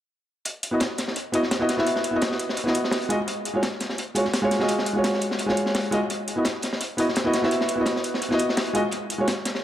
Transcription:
0.45 closed hi-hat
0.63 closed hi-hat
0.71 B3 E4 F#4 D#5
0.80 snare, closed hi-hat
0.98 snare, closed hi-hat
1.08 snare
1.16 closed hi-hat
1.32 B3 E4 F#4 D#5, closed hi-hat
1.43 snare
1.51 snare, closed hi-hat
1.59 B3 E4 F#4 D#5
1.69 snare, closed hi-hat
1.77 B3 E4 F#4 E5, snare
1.87 closed hi-hat
1.96 snare
2.04 closed hi-hat
2.11 B3 E4 F#4
2.16 D#5
2.22 snare, closed hi-hat
2.32 snare
2.39 closed hi-hat
2.49 snare
2.57 closed hi-hat
2.64 B3 E4 F#4, snare
2.69 D#5
2.74 closed hi-hat
2.84 snare
2.92 snare, closed hi-hat, open hi-hat
3.02 closed hi-hat
3.09 G#3 F4 F#4 D#5, closed hi-hat
3.28 closed hi-hat
3.45 closed hi-hat
3.54 G#3 F4 F#4 C#5
3.63 snare, closed hi-hat
3.80 snare, closed hi-hat
3.90 snare
3.98 closed hi-hat
4.15 G#3 F4 F#4 C#5, closed hi-hat
4.25 snare
4.33 snare, closed hi-hat
4.42 G#3 F4 F#4 C#5
4.51 snare, closed hi-hat
4.59 G#3 F4 F#4 D#5, snare
4.68 closed hi-hat
4.79 snare
4.86 closed hi-hat
4.93 G#3 F4 F#4
4.99 C#5
5.04 snare, closed hi-hat
5.14 snare
5.21 closed hi-hat
5.31 snare
5.39 closed hi-hat
5.46 G#3 F4 F#4, snare
5.51 C#5
5.57 closed hi-hat
5.66 snare
5.75 snare, closed hi-hat, open hi-hat
5.84 closed hi-hat
5.91 G#3 F4 F#4 D#5, closed hi-hat
6.10 closed hi-hat
6.28 closed hi-hat
6.36 B3 E4 F#4 D#5
6.45 snare, closed hi-hat
6.62 snare, closed hi-hat
6.73 snare
6.81 closed hi-hat
6.97 B3 E4 F#4 D#5, closed hi-hat
7.09 snare
7.15 snare, closed hi-hat
7.24 B3 E4 F#4 D#5
7.33 snare, closed hi-hat
7.42 B3 E4 F#4 E5, snare
7.51 closed hi-hat
7.61 snare
7.68 closed hi-hat
7.76 B3 E4 F#4
7.81 D#5
7.86 snare, closed hi-hat
7.96 snare
8.04 closed hi-hat
8.14 snare
8.22 closed hi-hat
8.29 B3 E4 F#4, snare
8.34 D#5
8.39 closed hi-hat
8.49 snare
8.57 snare, closed hi-hat, open hi-hat
8.67 closed hi-hat
8.73 G#3 F4 F#4 D#5, closed hi-hat
8.91 closed hi-hat
9.10 closed hi-hat
9.18 G#3 F4 F#4 C#5
9.28 snare, closed hi-hat
9.45 snare, closed hi-hat
9.55 snare

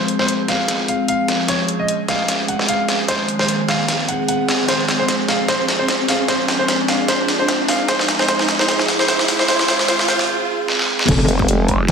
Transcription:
Already playing: F3 G#3 C4 G#4, riser
0.08 closed hi-hat
0.19 C5, snare
0.28 closed hi-hat
0.48 F5, snare, closed hi-hat
0.68 snare, closed hi-hat
0.88 F5, closed hi-hat
1.08 F5, closed hi-hat
1.28 snare, closed hi-hat
1.48 C#4 C#5, snare, closed hi-hat
1.68 closed hi-hat
1.79 D#5
1.88 closed hi-hat
2.08 F5, snare, closed hi-hat
2.28 snare, closed hi-hat
2.48 F#5, closed hi-hat
2.59 snare
2.68 F5, closed hi-hat
2.88 snare, closed hi-hat
3.08 D#3 C4 C5, snare, closed hi-hat
3.28 closed hi-hat
3.39 C5, snare
3.48 closed hi-hat
3.68 F5, snare, closed hi-hat
3.88 snare, closed hi-hat
4.08 F#5, closed hi-hat
4.28 F#5, closed hi-hat
4.49 snare, closed hi-hat
4.68 F3 C5, snare, closed hi-hat
4.88 snare, closed hi-hat
4.99 C5
5.08 snare, closed hi-hat
5.28 F5, snare, closed hi-hat
5.48 C5, snare, closed hi-hat
5.68 snare, closed hi-hat
5.79 C5
5.88 snare, closed hi-hat
6.08 F5, snare, open hi-hat
6.28 C5, snare, closed hi-hat
6.48 snare, closed hi-hat
6.59 C5
6.68 snare, closed hi-hat
6.88 F5, snare, closed hi-hat
7.08 C5, snare, closed hi-hat
7.28 snare, closed hi-hat
7.39 C5
7.48 snare, closed hi-hat
7.68 F5, snare, open hi-hat
7.88 G#3 C#4 G#4 C5, snare, closed hi-hat
7.99 snare
8.08 snare, closed hi-hat
8.19 C5, snare
8.28 C5, snare, closed hi-hat
8.39 snare
8.48 snare, closed hi-hat
8.59 C5, snare
8.68 C5, snare, closed hi-hat
8.79 snare
8.88 snare, closed hi-hat
8.99 C5, snare
9.08 C5, snare, closed hi-hat
9.19 snare
9.28 snare, open hi-hat
9.39 C5, snare
9.48 D#3 C4 C5, snare, closed hi-hat
9.59 snare
9.68 C5, snare, closed hi-hat
9.79 snare
9.88 C5, snare, closed hi-hat
9.99 snare
10.08 C5, snare, closed hi-hat
10.19 snare
10.68 snare
10.79 snare
10.99 snare
11.08 F1 F3 G#3 C4 G#4, kick, closed hi-hat, crash, impact
11.28 F1, closed hi-hat
11.39 kick
11.48 F1, closed hi-hat
11.68 kick, closed hi-hat
11.88 snare, closed hi-hat

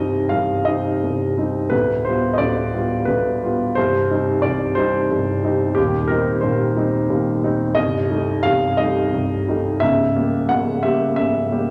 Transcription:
Already playing: C1 C2 G3 C4 D#4 D#5
0.29 C1 C2 F5
0.65 G3 C4 D#4 D#5
1.03 C1 C2
1.37 G3 C4 D#4
1.70 D1 D2 B4
2.05 G3 B3 F4 C5
2.34 D#5
2.38 D1 D2 D5
2.74 G3 B3 F4
3.05 D1 D2 B4
3.43 G3 B3 F4
3.75 C1 C2 C5
4.10 G3 C4 D#4
4.42 C1 C2 D5
4.75 G3 C4 D#4 C5
5.10 C1 C2
5.44 G3 C4 D#4
5.75 D#1 D#2 G4
6.08 G3 C4 D#4 A#4
6.41 D#1 D#2 C5
6.76 G3 C4 D#4
7.10 D#1 D#2
7.44 G3 C4 D#4
7.75 C1 C2 D#5
8.10 G3 A3 D#4
8.43 C1 C2 F5
8.77 G3 A3 D#4 D#5
9.13 C1 C2
9.48 G3 A3 D#4
9.80 C#1 C#2 E5
10.16 G3 A#3 G4
10.49 C#1 C#2 F#5
10.83 G3 A#3 G4 E5
11.16 C#1 C#2 E5
11.51 G3 A#3 G4

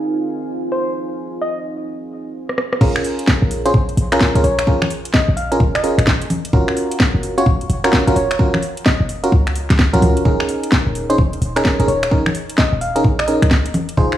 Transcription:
Already playing: C4 D#4 F4 G#4 A#4 C5 F5 G#5
0.72 C5
1.42 D#5
2.49 cross-stick
2.58 cross-stick
2.73 cross-stick
2.81 A#1 C#4 F4 G#4 A#4, kick, crash
2.96 finger snap
3.04 open hi-hat
3.19 closed hi-hat
3.27 kick, snare
3.42 A#1
3.51 open hi-hat
3.65 C#4 F4 G#4 C5, closed hi-hat
3.74 A#1, kick
3.89 closed hi-hat
3.97 A#1, open hi-hat
4.12 C#4 F4 G#4 A#4, finger snap, closed hi-hat
4.21 kick, snare
4.35 C#2 C#4 F4 G#4 A#4, closed hi-hat
4.44 A#1 C#5, open hi-hat
4.59 finger snap, closed hi-hat
4.67 C#4 F4 G#4 A#4, kick
4.82 finger snap, high conga
4.91 open hi-hat
5.05 closed hi-hat
5.14 D#5, kick, snare
5.28 A#1
5.37 F5, open hi-hat
5.52 C#4 F4 G#4 A#4, closed hi-hat
5.60 F1, kick
5.75 D#5, finger snap, closed hi-hat
5.84 C#4 F4 G#4 A#4, open hi-hat
5.98 G#1, finger snap, closed hi-hat
6.07 kick, snare
6.21 F#1, closed hi-hat
6.30 open hi-hat, high conga
6.45 closed hi-hat
6.53 F#1 C#4 F4 F#4 A#4, kick
6.68 finger snap
6.77 open hi-hat
6.91 closed hi-hat
7.00 kick, snare
7.15 F#1
7.23 open hi-hat
7.38 C#4 F4 F#4 C#5, closed hi-hat
7.46 F#1, kick
7.61 closed hi-hat
7.70 F#1, open hi-hat
7.84 C#4 F4 F#4 A#4, finger snap, closed hi-hat
7.93 kick, snare
8.07 A#1 C#4 F4 F#4 A#4, closed hi-hat
8.16 F#1 C#5, open hi-hat
8.31 finger snap, closed hi-hat
8.39 C#4 F4 F#4 A#4, kick
8.54 finger snap, high conga
8.63 open hi-hat
8.77 closed hi-hat
8.86 D#5, kick, snare
9.00 F#1
9.09 open hi-hat
9.24 C#4 F4 F#4 A#4, closed hi-hat
9.32 C#2, kick
9.47 finger snap, closed hi-hat
9.56 open hi-hat
9.70 C#2, finger snap, snare, closed hi-hat
9.79 kick, snare
9.93 C#2 C#4 F4 F#4 A#4, closed hi-hat, high conga
10.02 C#2, open hi-hat, high conga
10.17 F#1, closed hi-hat
10.25 D#1 C#4 D#4 G#4 A#4, kick
10.40 finger snap
10.49 open hi-hat
10.63 closed hi-hat
10.72 kick, snare
10.87 D#1
10.95 open hi-hat
11.10 C#4 D#4 G#4 C5, closed hi-hat
11.18 D#1, kick
11.33 closed hi-hat
11.42 D#1, open hi-hat
11.56 C#4 D#4 G#4 A#4, finger snap, closed hi-hat
11.65 kick, snare
11.79 G#1 C#4 D#4 G#4 A#4, closed hi-hat
11.88 D#1 C#5, open hi-hat
12.03 finger snap, closed hi-hat
12.11 C#4 D#4 G#4 A#4, kick
12.26 finger snap, high conga
12.35 open hi-hat
12.50 closed hi-hat
12.58 D#5, kick, snare
12.73 D#1
12.81 F5, open hi-hat
12.96 C#4 D#4 G#4 A#4, closed hi-hat
13.04 A#1, kick
13.19 D#5, finger snap, closed hi-hat
13.28 C#4 D#4 G#4 A#4, open hi-hat
13.42 C#2, finger snap, closed hi-hat
13.51 kick, snare
13.66 D#1, closed hi-hat
13.74 open hi-hat, high conga
13.89 closed hi-hat
13.97 F1 D#4 F4 G#4 C5, kick
14.12 finger snap

